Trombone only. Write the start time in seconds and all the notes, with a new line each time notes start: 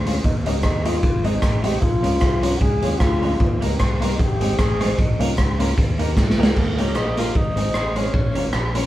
0.07 C#4
0.25 D#4
0.46 C#4
0.63 D#4
0.85 F4
1.24 D#4
1.63 G4
1.81 F4
2.60 G#4
3.00 F4
4.02 D#4
4.21 G4
4.61 G#4
4.99 D#4